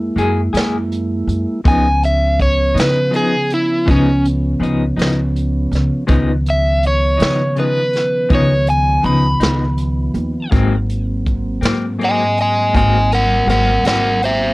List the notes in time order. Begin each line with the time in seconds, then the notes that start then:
Already playing: F#2 G#3 A#3 E4
0.16 F#2 F#3 A#3 E4 G#4, closed hi-hat
0.53 F#2 A#3 E4 G#4, closed hi-hat
0.57 snare
0.92 closed hi-hat
1.27 F#2, closed hi-hat
1.64 C#2 C#3 F3 B3 C#4 D#4 G#5, kick, closed hi-hat
2.03 E5, closed hi-hat
2.40 C#5, kick, closed hi-hat
2.74 C#3 F3 B3 D#4, closed hi-hat
2.79 B4, snare
3.11 C#3 F3 B3 D#4, closed hi-hat
3.16 G#4
3.50 E4, closed hi-hat
3.86 C#2 C#3 F3 B3 D#4, kick, closed hi-hat
3.91 C#4
4.25 closed hi-hat
4.60 C#2 C#3 F3 B3 D#4, closed hi-hat
4.96 C#2 F3 B3 D#4, closed hi-hat
5.02 snare
5.36 closed hi-hat
5.72 C#2, snare, closed hi-hat
6.07 C#2 C#3 D#3 F3 B3 D#4, kick, closed hi-hat
6.46 E5, closed hi-hat
6.83 closed hi-hat
6.87 C#5
7.17 C#3 F3 B3 D#4, closed hi-hat
7.22 snare
7.55 C#3 F3 B3 D#4, closed hi-hat
7.60 B4
7.93 snare, closed hi-hat
8.29 C#2 C#3 F3 B3 D#4, kick, closed hi-hat
8.35 C#5
8.67 G#5, closed hi-hat
9.01 C#2 C#3 F3 B3 D#4, closed hi-hat
9.06 B5
9.40 C#2 F3 B3 D#4, snare, closed hi-hat
9.78 closed hi-hat
10.14 D#2, closed hi-hat
10.50 G#1 G#2 F#3 A#3 C4, kick, closed hi-hat
10.90 closed hi-hat
11.26 kick, closed hi-hat
11.61 G#2 F#3 A#3 C4, closed hi-hat
11.65 snare
11.98 G#2 F#3 A#3 C4, closed hi-hat
12.04 D#5 G#5
12.37 D#5, closed hi-hat
12.42 G#5
12.73 G#1 G#2 F#3 A#3 C4 D#5 G#5, kick, closed hi-hat
13.12 A#4 F#5, closed hi-hat
13.46 G#1 G#2 F#3 A#3 C4 A#4, closed hi-hat
13.51 F#5
13.84 G#1 F#3 A#3 C4 A#4, closed hi-hat
13.88 F#5, snare
14.22 C5 E5, closed hi-hat